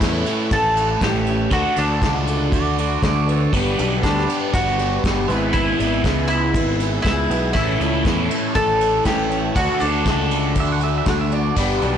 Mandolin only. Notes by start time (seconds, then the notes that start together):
Already playing: E4
0.53 A4
1.03 G4
1.53 F#4
1.78 D4
4.03 D4
4.54 F#4
5.53 E4
6.28 E4
7.02 E4
7.53 E4
8.55 A4
9.05 G4
9.56 F#4
9.80 D4